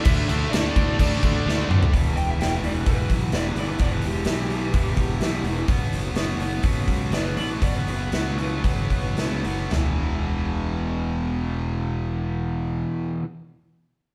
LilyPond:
<<
  \new Staff \with { instrumentName = "Lead electric guitar" } { \time 4/4 \key b \minor \tempo 4 = 125 e''4 d''4 d''4. r8 | r8 g''16 e''16 g''16 e''16 d''16 b'16 b'8 r8 d''16 b'16 d''16 b'16 | d''16 b'16 g'2. r8 | r2. d''16 b'16 d''16 b'16 |
d''16 b'16 b'2. r8 | r1 | r1 | }
  \new Staff \with { instrumentName = "Distorted electric guitar" } { \time 4/4 \key b \minor <d a d'>8 <d a d'>8 <d a d'>8 <d a d'>8 <d a d'>8 <d a d'>8 <d a d'>8 <d a d'>8 | r1 | r1 | r1 |
r1 | r1 | r1 | }
  \new Staff \with { instrumentName = "Distorted electric guitar" } { \clef bass \time 4/4 \key b \minor <d a d'>8 <d a d'>8 <d a d'>8 <d a d'>8 <d a d'>8 <d a d'>8 <d a d'>8 <d a d'>8 | <e, b, e>4 <e, b, e>8 <e, b, e>8 <e, b, e>4 <e, b, e>8 <e, b, e>8 | <e, b, e>4 <e, b, e>8 <e, b, e>8 <e, b, e>4 <e, b, e>8 <e, b, e>8 | <b, fis b>4 <b, fis b>8 <b, fis b>8 <b, fis b>4 <b, fis b>8 <b, fis b>8 |
<b, fis b>4 <b, fis b>8 <b, fis b>8 <b, fis b>4 <b, fis b>8 <b, fis b>8 | <e, b, e>1~ | <e, b, e>1 | }
  \new Staff \with { instrumentName = "Overdriven electric guitar" } { \clef bass \time 4/4 \key b \minor <d a d'>8 <d a d'>8 <d a d'>8 <d a d'>8 <d a d'>8 <d a d'>8 <d a d'>8 <d a d'>8 | <e, b, e>4 <e, b, e>8 <e, b, e>8 <e, b, e>4 <e, b, e>8 <e, b, e>8 | <e, b, e>4 <e, b, e>8 <e, b, e>8 <e, b, e>4 <e, b, e>8 <e, b, e>8 | <b, fis b>4 <b, fis b>8 <b, fis b>8 <b, fis b>4 <b, fis b>8 <b, fis b>8 |
<b, fis b>4 <b, fis b>8 <b, fis b>8 <b, fis b>4 <b, fis b>8 <b, fis b>8 | <e, b, e>1~ | <e, b, e>1 | }
  \new Staff \with { instrumentName = "Fingered electric bass" } { \clef bass \time 4/4 \key b \minor d,8 d,8 d,8 d,8 d,8 d,8 d,8 fis,8 | e,,8 e,,8 e,,8 e,,8 e,,8 b,,8 e,,8 g,,8 | e,,8 e,,8 b,,4 e,,4 b,,8 e,,8 | fis,,8 fis,,8 fis,,8 fis,,8 fis,,8 cis,8 fis,,8 a,,8 |
fis,,8 fis,,8 cis,4 fis,,4 cis,8 fis,,8 | e,,1~ | e,,1 | }
  \new DrumStaff \with { instrumentName = "Drums" } \drummode { \time 4/4 <cymc bd>8 cymc8 <cymc sn>8 <cymc bd>8 <cymc bd>8 <cymc bd>8 sn8 toml16 tomfh16 | <hho bd>8 hho8 <hho sn>8 hho8 <hho bd>8 <hho bd>8 <hho sn>8 hho8 | <hho bd>8 hho8 <hho sn>8 hho8 <hho bd>8 <hho bd>8 <hho sn>8 hho8 | <hho bd>8 hho8 <hho sn>8 hho8 <hho bd>8 <hho bd>8 <hho sn>8 hho8 |
<hho bd>8 hho8 <hho sn>8 hho8 <hho bd>8 <hho bd>8 <hho sn>8 hho8 | <sn tomfh>4 r4 r4 r4 | r4 r4 r4 r4 | }
>>